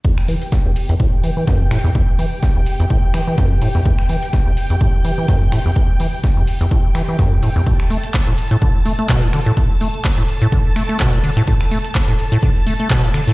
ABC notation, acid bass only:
X:1
M:4/4
L:1/16
Q:"Swing 16ths" 1/4=126
K:Em
V:1 name="Acid bass" clef=bass
E,, z E, z2 E,, z E,, A,, z E, E, F,, E,, A,, E,, | E,, z E, z2 E,, z E,, A,, z E, E, F,, E,, A,, E,, | E,, z E, z2 E,, z E,, A,, z E, E, F,, E,, A,, E,, | E,, z E, z2 E,, z E,, A,, z E, E, F,, E,, A,, E,, |
A,, z A, z2 A,, z A,, D, z A, A, B,, A,, D, A,, | A,, z A, z2 A,, z A,, D, z A, A, B,, A,, D, A,, | A,, z A, z2 A,, z A,, D, z A, A, B,, A,, D, A,, |]